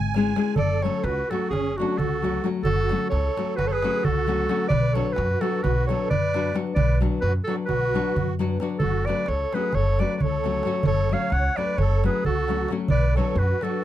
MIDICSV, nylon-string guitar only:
0, 0, Header, 1, 2, 480
1, 0, Start_track
1, 0, Key_signature, 3, "minor"
1, 0, Tempo, 456621
1, 615, Time_signature, 9, 3, 24, 8
1, 14551, End_track
2, 0, Start_track
2, 0, Title_t, "Nylon-string guitar"
2, 0, Program_c, 0, 24
2, 166, Note_on_c, 0, 56, 74
2, 171, Note_on_c, 0, 61, 61
2, 179, Note_on_c, 0, 64, 53
2, 187, Note_on_c, 0, 68, 81
2, 353, Note_off_c, 0, 56, 0
2, 356, Note_off_c, 0, 61, 0
2, 360, Note_off_c, 0, 64, 0
2, 364, Note_off_c, 0, 68, 0
2, 381, Note_on_c, 0, 56, 70
2, 386, Note_on_c, 0, 61, 65
2, 395, Note_on_c, 0, 64, 64
2, 404, Note_on_c, 0, 68, 72
2, 570, Note_off_c, 0, 56, 0
2, 573, Note_off_c, 0, 61, 0
2, 577, Note_off_c, 0, 64, 0
2, 582, Note_off_c, 0, 68, 0
2, 874, Note_on_c, 0, 54, 61
2, 888, Note_on_c, 0, 57, 58
2, 892, Note_on_c, 0, 61, 61
2, 898, Note_on_c, 0, 66, 68
2, 1067, Note_off_c, 0, 54, 0
2, 1074, Note_off_c, 0, 57, 0
2, 1076, Note_off_c, 0, 61, 0
2, 1078, Note_off_c, 0, 66, 0
2, 1371, Note_on_c, 0, 54, 53
2, 1381, Note_on_c, 0, 57, 55
2, 1383, Note_on_c, 0, 61, 52
2, 1390, Note_on_c, 0, 66, 66
2, 1563, Note_off_c, 0, 54, 0
2, 1568, Note_off_c, 0, 57, 0
2, 1568, Note_off_c, 0, 61, 0
2, 1573, Note_off_c, 0, 66, 0
2, 1885, Note_on_c, 0, 54, 64
2, 1889, Note_on_c, 0, 57, 60
2, 1901, Note_on_c, 0, 61, 56
2, 1908, Note_on_c, 0, 66, 75
2, 2067, Note_off_c, 0, 54, 0
2, 2070, Note_off_c, 0, 57, 0
2, 2075, Note_off_c, 0, 61, 0
2, 2079, Note_off_c, 0, 66, 0
2, 2338, Note_on_c, 0, 54, 58
2, 2350, Note_on_c, 0, 57, 52
2, 2358, Note_on_c, 0, 61, 56
2, 2363, Note_on_c, 0, 66, 60
2, 2525, Note_off_c, 0, 54, 0
2, 2531, Note_off_c, 0, 57, 0
2, 2536, Note_off_c, 0, 61, 0
2, 2537, Note_off_c, 0, 66, 0
2, 2563, Note_on_c, 0, 54, 64
2, 2569, Note_on_c, 0, 57, 57
2, 2580, Note_on_c, 0, 61, 58
2, 2585, Note_on_c, 0, 66, 70
2, 2747, Note_off_c, 0, 54, 0
2, 2750, Note_off_c, 0, 57, 0
2, 2756, Note_off_c, 0, 61, 0
2, 2757, Note_off_c, 0, 66, 0
2, 3053, Note_on_c, 0, 54, 64
2, 3057, Note_on_c, 0, 57, 58
2, 3062, Note_on_c, 0, 61, 56
2, 3063, Note_on_c, 0, 66, 65
2, 3240, Note_off_c, 0, 54, 0
2, 3243, Note_off_c, 0, 57, 0
2, 3244, Note_off_c, 0, 61, 0
2, 3245, Note_off_c, 0, 66, 0
2, 3539, Note_on_c, 0, 54, 57
2, 3549, Note_on_c, 0, 57, 57
2, 3556, Note_on_c, 0, 61, 50
2, 3559, Note_on_c, 0, 66, 66
2, 3730, Note_off_c, 0, 54, 0
2, 3735, Note_off_c, 0, 57, 0
2, 3736, Note_off_c, 0, 61, 0
2, 3740, Note_off_c, 0, 66, 0
2, 4021, Note_on_c, 0, 54, 60
2, 4031, Note_on_c, 0, 57, 61
2, 4039, Note_on_c, 0, 61, 63
2, 4043, Note_on_c, 0, 66, 81
2, 4217, Note_off_c, 0, 54, 0
2, 4222, Note_off_c, 0, 57, 0
2, 4226, Note_off_c, 0, 66, 0
2, 4227, Note_off_c, 0, 61, 0
2, 4490, Note_on_c, 0, 54, 60
2, 4497, Note_on_c, 0, 57, 59
2, 4505, Note_on_c, 0, 61, 57
2, 4513, Note_on_c, 0, 66, 64
2, 4682, Note_off_c, 0, 54, 0
2, 4685, Note_off_c, 0, 57, 0
2, 4690, Note_off_c, 0, 61, 0
2, 4692, Note_off_c, 0, 66, 0
2, 4719, Note_on_c, 0, 54, 67
2, 4725, Note_on_c, 0, 57, 58
2, 4733, Note_on_c, 0, 61, 62
2, 4738, Note_on_c, 0, 66, 67
2, 4905, Note_off_c, 0, 54, 0
2, 4907, Note_off_c, 0, 57, 0
2, 4912, Note_off_c, 0, 61, 0
2, 4914, Note_off_c, 0, 66, 0
2, 5201, Note_on_c, 0, 54, 69
2, 5207, Note_on_c, 0, 59, 59
2, 5214, Note_on_c, 0, 62, 59
2, 5218, Note_on_c, 0, 66, 71
2, 5393, Note_off_c, 0, 54, 0
2, 5396, Note_off_c, 0, 59, 0
2, 5400, Note_off_c, 0, 66, 0
2, 5401, Note_off_c, 0, 62, 0
2, 5687, Note_on_c, 0, 54, 64
2, 5694, Note_on_c, 0, 59, 60
2, 5700, Note_on_c, 0, 62, 50
2, 5706, Note_on_c, 0, 66, 65
2, 5882, Note_off_c, 0, 54, 0
2, 5885, Note_off_c, 0, 59, 0
2, 5889, Note_off_c, 0, 62, 0
2, 5892, Note_off_c, 0, 66, 0
2, 6196, Note_on_c, 0, 54, 66
2, 6203, Note_on_c, 0, 59, 64
2, 6206, Note_on_c, 0, 62, 63
2, 6210, Note_on_c, 0, 66, 70
2, 6383, Note_off_c, 0, 54, 0
2, 6384, Note_off_c, 0, 59, 0
2, 6388, Note_off_c, 0, 62, 0
2, 6388, Note_off_c, 0, 66, 0
2, 6664, Note_on_c, 0, 54, 63
2, 6675, Note_on_c, 0, 59, 57
2, 6679, Note_on_c, 0, 62, 64
2, 6687, Note_on_c, 0, 66, 65
2, 6846, Note_off_c, 0, 54, 0
2, 6852, Note_off_c, 0, 59, 0
2, 6853, Note_off_c, 0, 62, 0
2, 6858, Note_off_c, 0, 66, 0
2, 6876, Note_on_c, 0, 54, 62
2, 6885, Note_on_c, 0, 59, 64
2, 6890, Note_on_c, 0, 62, 67
2, 6895, Note_on_c, 0, 66, 76
2, 7061, Note_off_c, 0, 54, 0
2, 7065, Note_off_c, 0, 59, 0
2, 7068, Note_off_c, 0, 62, 0
2, 7070, Note_off_c, 0, 66, 0
2, 7364, Note_on_c, 0, 54, 67
2, 7372, Note_on_c, 0, 59, 55
2, 7380, Note_on_c, 0, 62, 55
2, 7387, Note_on_c, 0, 66, 71
2, 7553, Note_off_c, 0, 54, 0
2, 7556, Note_off_c, 0, 59, 0
2, 7561, Note_off_c, 0, 62, 0
2, 7563, Note_off_c, 0, 66, 0
2, 7856, Note_on_c, 0, 54, 62
2, 7863, Note_on_c, 0, 59, 53
2, 7871, Note_on_c, 0, 62, 53
2, 7877, Note_on_c, 0, 66, 57
2, 8045, Note_off_c, 0, 54, 0
2, 8048, Note_off_c, 0, 59, 0
2, 8052, Note_off_c, 0, 62, 0
2, 8054, Note_off_c, 0, 66, 0
2, 8344, Note_on_c, 0, 54, 60
2, 8353, Note_on_c, 0, 59, 57
2, 8358, Note_on_c, 0, 62, 59
2, 8363, Note_on_c, 0, 66, 78
2, 8534, Note_off_c, 0, 54, 0
2, 8539, Note_off_c, 0, 59, 0
2, 8540, Note_off_c, 0, 62, 0
2, 8544, Note_off_c, 0, 66, 0
2, 8821, Note_on_c, 0, 54, 79
2, 8828, Note_on_c, 0, 59, 62
2, 8836, Note_on_c, 0, 62, 61
2, 8840, Note_on_c, 0, 66, 78
2, 9003, Note_off_c, 0, 54, 0
2, 9006, Note_off_c, 0, 59, 0
2, 9010, Note_off_c, 0, 62, 0
2, 9012, Note_off_c, 0, 66, 0
2, 9049, Note_on_c, 0, 54, 68
2, 9055, Note_on_c, 0, 59, 62
2, 9060, Note_on_c, 0, 62, 70
2, 9067, Note_on_c, 0, 66, 81
2, 9226, Note_off_c, 0, 54, 0
2, 9226, Note_off_c, 0, 59, 0
2, 9231, Note_off_c, 0, 62, 0
2, 9234, Note_off_c, 0, 66, 0
2, 9536, Note_on_c, 0, 54, 65
2, 9541, Note_on_c, 0, 57, 56
2, 9545, Note_on_c, 0, 61, 60
2, 9559, Note_on_c, 0, 66, 68
2, 9718, Note_off_c, 0, 54, 0
2, 9718, Note_off_c, 0, 57, 0
2, 9721, Note_off_c, 0, 61, 0
2, 9728, Note_off_c, 0, 66, 0
2, 10018, Note_on_c, 0, 54, 56
2, 10030, Note_on_c, 0, 57, 55
2, 10037, Note_on_c, 0, 61, 57
2, 10045, Note_on_c, 0, 66, 61
2, 10204, Note_off_c, 0, 54, 0
2, 10210, Note_off_c, 0, 57, 0
2, 10213, Note_off_c, 0, 61, 0
2, 10217, Note_off_c, 0, 66, 0
2, 10505, Note_on_c, 0, 54, 68
2, 10512, Note_on_c, 0, 57, 60
2, 10518, Note_on_c, 0, 61, 53
2, 10525, Note_on_c, 0, 66, 70
2, 10693, Note_off_c, 0, 54, 0
2, 10697, Note_off_c, 0, 57, 0
2, 10700, Note_off_c, 0, 61, 0
2, 10702, Note_off_c, 0, 66, 0
2, 10978, Note_on_c, 0, 54, 57
2, 10982, Note_on_c, 0, 57, 57
2, 10989, Note_on_c, 0, 61, 58
2, 10993, Note_on_c, 0, 66, 62
2, 11159, Note_off_c, 0, 54, 0
2, 11162, Note_off_c, 0, 57, 0
2, 11165, Note_off_c, 0, 61, 0
2, 11167, Note_off_c, 0, 66, 0
2, 11195, Note_on_c, 0, 54, 60
2, 11206, Note_on_c, 0, 57, 56
2, 11214, Note_on_c, 0, 61, 58
2, 11217, Note_on_c, 0, 66, 70
2, 11377, Note_off_c, 0, 54, 0
2, 11383, Note_off_c, 0, 57, 0
2, 11385, Note_off_c, 0, 61, 0
2, 11387, Note_off_c, 0, 66, 0
2, 11677, Note_on_c, 0, 54, 60
2, 11686, Note_on_c, 0, 57, 52
2, 11694, Note_on_c, 0, 61, 56
2, 11696, Note_on_c, 0, 66, 61
2, 11866, Note_off_c, 0, 54, 0
2, 11870, Note_off_c, 0, 57, 0
2, 11874, Note_off_c, 0, 61, 0
2, 11875, Note_off_c, 0, 66, 0
2, 12163, Note_on_c, 0, 54, 60
2, 12169, Note_on_c, 0, 57, 54
2, 12175, Note_on_c, 0, 61, 53
2, 12176, Note_on_c, 0, 66, 63
2, 12354, Note_off_c, 0, 54, 0
2, 12357, Note_off_c, 0, 57, 0
2, 12360, Note_off_c, 0, 61, 0
2, 12360, Note_off_c, 0, 66, 0
2, 12653, Note_on_c, 0, 54, 63
2, 12660, Note_on_c, 0, 57, 53
2, 12668, Note_on_c, 0, 61, 56
2, 12671, Note_on_c, 0, 66, 77
2, 12845, Note_off_c, 0, 54, 0
2, 12848, Note_off_c, 0, 57, 0
2, 12853, Note_off_c, 0, 61, 0
2, 12853, Note_off_c, 0, 66, 0
2, 13127, Note_on_c, 0, 54, 64
2, 13135, Note_on_c, 0, 57, 60
2, 13140, Note_on_c, 0, 61, 54
2, 13145, Note_on_c, 0, 66, 67
2, 13312, Note_off_c, 0, 54, 0
2, 13316, Note_off_c, 0, 57, 0
2, 13318, Note_off_c, 0, 61, 0
2, 13320, Note_off_c, 0, 66, 0
2, 13354, Note_on_c, 0, 54, 64
2, 13362, Note_on_c, 0, 57, 59
2, 13371, Note_on_c, 0, 61, 64
2, 13375, Note_on_c, 0, 66, 67
2, 13533, Note_off_c, 0, 54, 0
2, 13538, Note_off_c, 0, 57, 0
2, 13542, Note_off_c, 0, 61, 0
2, 13544, Note_off_c, 0, 66, 0
2, 13842, Note_on_c, 0, 54, 67
2, 13850, Note_on_c, 0, 59, 62
2, 13858, Note_on_c, 0, 62, 64
2, 13865, Note_on_c, 0, 66, 72
2, 14025, Note_off_c, 0, 54, 0
2, 14029, Note_off_c, 0, 59, 0
2, 14033, Note_off_c, 0, 62, 0
2, 14037, Note_off_c, 0, 66, 0
2, 14321, Note_on_c, 0, 54, 63
2, 14329, Note_on_c, 0, 59, 58
2, 14336, Note_on_c, 0, 62, 57
2, 14342, Note_on_c, 0, 66, 67
2, 14510, Note_off_c, 0, 54, 0
2, 14514, Note_off_c, 0, 59, 0
2, 14516, Note_off_c, 0, 62, 0
2, 14521, Note_off_c, 0, 66, 0
2, 14551, End_track
0, 0, End_of_file